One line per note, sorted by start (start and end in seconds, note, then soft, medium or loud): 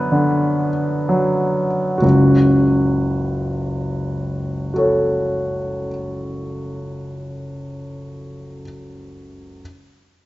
0.00 1.96 F#2 soft
0.00 0.12 D3 soft
0.00 0.68 B3 soft
0.00 2.00 B4 soft
0.12 1.67 D3 soft
1.09 2.02 F#3 soft
1.98 5.88 C#2 soft
1.98 4.72 F#4 soft
2.02 5.89 F#1 soft
4.74 8.60 F#4 soft
4.74 8.62 A4 soft
4.78 8.64 C#5 soft